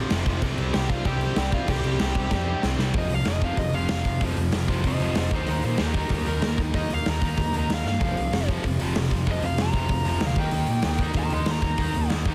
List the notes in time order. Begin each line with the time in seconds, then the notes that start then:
Already playing: F2 C3 F3
0.10 F1 F2 C3 F3, snare, crash
0.26 F1 F2 C3 F3, kick, crash
0.41 C2 C3 G3 C4, kick, crash
0.58 C2, crash
0.74 C2 C3 G3 C4 G4 G5, snare, crash
0.89 C2 C3 G3 C4 F4 F5, kick, crash
1.04 C2 C3 G3 C4 G4 G5, kick, crash
1.21 crash
1.36 C2 C3 G3 C4 G4 G5, snare, crash
1.52 C3 G3 C4 F4 F5, kick, crash
1.67 C2 C3 G3 C4 G5, kick, crash
1.71 G4
1.84 C2, crash
1.99 C2 C3 G3 C4, snare, crash
2.15 C2 C3 G3 C4, kick, crash
2.30 F2 C3 G3 C4, kick, snare
2.62 C2 C3 G3 C4, snare
2.78 C2 C3 G3 C4, snare
2.93 F1 F2 C3 F3, kick, open hi-hat
2.98 D#5
3.09 C2 F2 C3, open hi-hat
3.14 F5
3.25 F1 F2 C3, snare, open hi-hat
3.29 D#5
3.40 F2 C3 F3, kick, open hi-hat
3.44 F2 F5
3.57 F1 F2 C3 D#5, kick, open hi-hat
3.73 F1 F2 C3 F3 F5, open hi-hat
3.89 F1 F2 C3 F5, snare, open hi-hat
4.05 F1 F2 C3, kick, open hi-hat
4.20 F1 F2 C3 F3, kick, open hi-hat
4.37 F1 F2 C3, open hi-hat
4.52 F1 F2 C3, snare, open hi-hat
4.68 F1 F2 C3 F3, kick, open hi-hat
4.83 F1 F2 C3 C5, kick, open hi-hat
4.87 D#5
5.00 F1 F2 C3 F3 C5 D#5, open hi-hat
5.15 F1 F2 C3 C5 D#5, snare, open hi-hat
5.31 D#2 D#3 A#3 D#4, kick, open hi-hat
5.35 C5
5.47 D#2 D#3 A#3 D#4 C5, open hi-hat
5.63 A#2 D#3 A#3 D#4 C5, open hi-hat
5.78 D#2 D#3 A#3 D#4 G4, snare, open hi-hat
5.82 A#4
5.94 D#3 A#3 D#4 G4 A#4, kick, open hi-hat
6.09 D#2 D#3 A#3 G4, kick, open hi-hat
6.13 A#4
6.26 D#2 D#3 A#3 D#4 A#4, open hi-hat
6.42 D#2 D#3 A#3, snare, open hi-hat
6.57 D#2 D#3 A#3 D#4, kick, open hi-hat
6.74 D#2 D#3 A#3 D#4 D#5, kick, open hi-hat
6.90 D#2 D#3 A#3 F5, open hi-hat
7.06 D#2 D#3 A#3 D#4 A#5, snare, open hi-hat
7.21 D#2 D#3 A#3 D#4, kick, open hi-hat
7.37 D#2 D#3 A#3, kick, open hi-hat
7.52 D#2 D#3 A#3 D#4, open hi-hat
7.59 A#5
7.69 D#2 D#3 A#3, snare, open hi-hat
7.74 F5
7.84 G2 D#3 A#3 F5, snare
8.00 F1 F2 C3 F3, kick, open hi-hat
8.16 C2 F2 C3, open hi-hat
8.32 F1 F2 C3, snare, open hi-hat
8.48 F2 C3 F3, kick, open hi-hat
8.64 F1 F2 C3, kick, open hi-hat
8.79 F1 F2 C3 F3, open hi-hat
8.95 F1 F2 C3, snare, open hi-hat
9.10 F1 F2 C3, kick, open hi-hat
9.26 F1 F2 C3 F3, kick, open hi-hat
9.31 D#5
9.42 F1 F2 C3 F5, open hi-hat
9.57 F1 F2 C3, snare, open hi-hat
9.62 A#5
9.73 F1 F2 C3 F3, kick, open hi-hat
9.88 F1 F2 C3, kick, open hi-hat
10.05 F1 F2 C3 F3 A#5, open hi-hat
10.20 D2 F2 C3, snare, open hi-hat
10.26 F5
10.36 D#2 D#3 A#3 D#4, kick, open hi-hat
10.40 G5
10.51 D#2 D#3 A#3 D#4, open hi-hat
10.67 A#2 D#3 A#3, open hi-hat
10.82 D#2 D#3 A#3 D#4, snare, open hi-hat
10.98 D#3 A#3 D#4, kick, open hi-hat
11.14 D#2 D#3 A#3 G5, kick, open hi-hat
11.19 A#5
11.30 D#2 D#3 A#3 D#4 D#5, open hi-hat
11.34 C6
11.46 D#2 D#3 A#3, snare, open hi-hat
11.51 A#5
11.62 D#2 D#3 A#3 D#4, kick, open hi-hat
11.78 D#2 D#3 A#3 D#4, kick, open hi-hat
11.93 D#2 D#3 A#3, open hi-hat
12.09 D#2 D#3 A#3 D#4, snare, open hi-hat
12.25 D#2 D#3 A#3 D#4, kick, open hi-hat